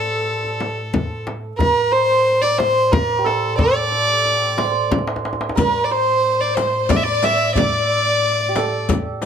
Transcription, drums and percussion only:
0.44 tombak ka soft
0.60 tombak tek medium
0.60 frame drum medium
0.94 frame drum medium
0.94 tombak dum medium
1.27 tombak tek medium
1.27 frame drum medium
1.59 tombak dum medium
1.59 frame drum medium
2.42 tombak ka soft
2.58 tombak tek medium
2.58 frame drum medium
2.93 tombak dum medium
2.93 frame drum loud
3.26 tombak tek medium
3.59 tombak dum medium
3.59 frame drum medium
3.92 tombak ka soft
4.25 tombak ka soft
4.58 tombak tek medium
4.58 frame drum medium
4.91 tombak tek soft
4.91 frame drum medium
4.99 tombak ka medium
5.07 tombak tek medium
5.16 tombak ka medium
5.25 tombak tek medium
5.33 tombak ka medium
5.41 tombak tek medium
5.49 tombak ka medium
5.57 riq medium
5.57 tombak dum medium
5.57 frame drum medium
6.41 tombak ka soft
6.57 riq soft
6.57 tombak tek medium
6.57 frame drum medium
6.89 riq medium
6.89 tombak dum medium
6.89 frame drum loud
7.22 riq soft
7.22 tombak tek medium
7.22 frame drum medium
7.56 riq medium
7.56 tombak dum medium
7.56 frame drum medium
8.56 riq soft
8.56 tombak tek medium
8.56 frame drum medium
8.89 riq medium
8.89 tombak dum medium
8.89 frame drum medium
9.22 riq soft
9.22 tombak tek medium

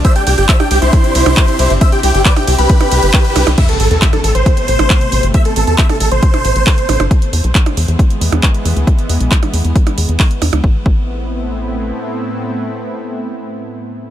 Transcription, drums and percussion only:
0.05 kick loud
0.05 closed hi-hat medium
0.05 ride medium
0.16 closed hi-hat soft
0.27 open hi-hat loud
0.27 ride medium
0.38 closed hi-hat soft
0.49 kick loud
0.49 clap loud
0.49 closed hi-hat medium
0.49 ride medium
0.60 closed hi-hat soft
0.60 percussion blips medium
0.71 open hi-hat loud
0.71 ride medium
0.82 closed hi-hat soft
0.93 kick loud
0.93 closed hi-hat medium
0.93 ride medium
1.04 closed hi-hat soft
1.15 open hi-hat loud
1.15 ride medium
1.26 closed hi-hat soft
1.26 percussion blips medium
1.37 kick loud
1.37 clap loud
1.37 closed hi-hat medium
1.37 ride medium
1.48 closed hi-hat soft
1.59 open hi-hat loud
1.59 ride medium
1.70 closed hi-hat soft
1.81 kick loud
1.81 closed hi-hat medium
1.81 ride medium
1.92 closed hi-hat soft
2.03 open hi-hat loud
2.03 ride medium
2.15 closed hi-hat soft
2.25 kick loud
2.25 clap loud
2.25 closed hi-hat medium
2.36 closed hi-hat soft
2.36 percussion blips medium
2.48 open hi-hat loud
2.48 ride medium
2.59 closed hi-hat soft
2.69 kick loud
2.69 closed hi-hat medium
2.69 ride medium
2.81 closed hi-hat soft
2.81 percussion blips medium
2.92 open hi-hat loud
2.92 ride medium
3.03 closed hi-hat soft
3.14 kick loud
3.14 clap loud
3.14 open hi-hat medium
3.25 closed hi-hat soft
3.36 open hi-hat loud
3.36 ride medium
3.36 percussion blips medium
3.47 closed hi-hat soft
3.47 percussion blips medium
3.58 kick loud
3.58 closed hi-hat medium
3.58 crash medium
3.69 closed hi-hat soft
3.80 open hi-hat loud
3.91 closed hi-hat soft
4.02 kick loud
4.02 clap loud
4.02 closed hi-hat medium
4.13 closed hi-hat soft
4.13 percussion blips medium
4.24 open hi-hat loud
4.35 closed hi-hat soft
4.46 kick loud
4.46 closed hi-hat medium
4.57 closed hi-hat soft
4.68 open hi-hat loud
4.79 closed hi-hat soft
4.79 percussion blips medium
4.90 kick loud
4.90 clap loud
4.90 closed hi-hat medium
5.01 closed hi-hat soft
5.12 open hi-hat loud
5.23 closed hi-hat soft
5.34 kick loud
5.34 closed hi-hat medium
5.45 closed hi-hat soft
5.56 open hi-hat loud
5.67 closed hi-hat soft
5.78 kick loud
5.78 clap loud
5.78 closed hi-hat medium
5.89 closed hi-hat soft
5.89 percussion blips medium
6.00 open hi-hat loud
6.12 closed hi-hat soft
6.23 kick loud
6.23 closed hi-hat medium
6.34 closed hi-hat soft
6.34 percussion blips medium
6.45 open hi-hat loud
6.56 closed hi-hat soft
6.67 kick loud
6.67 clap loud
6.67 open hi-hat medium
6.78 closed hi-hat soft
6.89 open hi-hat loud
6.89 percussion blips medium
7.00 closed hi-hat soft
7.00 percussion blips medium
7.11 kick loud
7.11 closed hi-hat medium
7.22 closed hi-hat soft
7.33 open hi-hat loud
7.44 closed hi-hat soft
7.55 kick loud
7.55 clap loud
7.55 closed hi-hat medium
7.66 closed hi-hat soft
7.66 percussion blips medium
7.77 open hi-hat loud
7.88 closed hi-hat soft
7.99 kick loud
7.99 closed hi-hat medium
8.10 closed hi-hat soft
8.21 open hi-hat loud
8.32 closed hi-hat soft
8.32 percussion blips medium
8.43 kick loud
8.43 clap loud
8.43 closed hi-hat medium
8.54 closed hi-hat soft
8.65 open hi-hat loud
8.77 closed hi-hat soft
8.87 kick loud
8.87 closed hi-hat medium
8.99 closed hi-hat soft
9.09 open hi-hat loud
9.21 closed hi-hat soft
9.31 kick loud
9.31 clap loud
9.31 closed hi-hat medium
9.43 closed hi-hat soft
9.43 percussion blips medium
9.54 open hi-hat loud
9.65 closed hi-hat soft
9.76 kick loud
9.76 closed hi-hat medium
9.87 closed hi-hat soft
9.87 percussion blips medium
9.98 open hi-hat loud
10.09 closed hi-hat soft
10.20 kick loud
10.20 clap loud
10.20 open hi-hat medium
10.31 closed hi-hat soft
10.42 open hi-hat loud
10.42 percussion blips medium
10.53 closed hi-hat soft
10.53 percussion blips medium
10.64 kick loud
10.86 kick loud

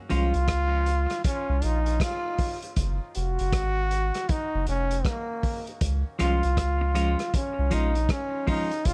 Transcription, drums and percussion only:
0.10 closed hi-hat medium
0.34 closed hi-hat soft
0.48 kick medium
0.48 cross-stick loud
0.48 closed hi-hat medium
0.86 closed hi-hat medium
1.10 cross-stick medium
1.10 closed hi-hat soft
1.24 kick loud
1.24 closed hi-hat medium
1.62 closed hi-hat medium
1.86 closed hi-hat soft
2.00 kick loud
2.00 cross-stick loud
2.00 closed hi-hat medium
2.38 kick medium
2.38 open hi-hat medium
2.62 closed hi-hat medium
2.76 kick loud
2.76 closed hi-hat medium
3.15 closed hi-hat medium
3.39 closed hi-hat soft
3.52 kick loud
3.52 cross-stick medium
3.52 closed hi-hat medium
3.91 closed hi-hat medium
4.14 cross-stick medium
4.14 closed hi-hat medium
4.29 kick loud
4.29 closed hi-hat medium
4.67 closed hi-hat medium
4.91 closed hi-hat soft
5.05 kick loud
5.05 cross-stick loud
5.05 closed hi-hat medium
5.43 kick medium
5.43 open hi-hat medium
5.67 closed hi-hat medium
5.81 kick loud
5.81 closed hi-hat medium
6.19 cross-stick medium
6.19 closed hi-hat medium
6.43 closed hi-hat soft
6.57 kick loud
6.57 cross-stick loud
6.57 closed hi-hat loud
6.95 closed hi-hat medium
7.19 cross-stick medium
7.19 closed hi-hat soft
7.34 kick loud
7.34 closed hi-hat medium
7.71 closed hi-hat medium
7.95 closed hi-hat soft
8.09 kick loud
8.09 cross-stick loud
8.09 closed hi-hat medium
8.47 kick medium
8.47 open hi-hat medium
8.71 closed hi-hat soft
8.85 kick medium
8.85 closed hi-hat medium

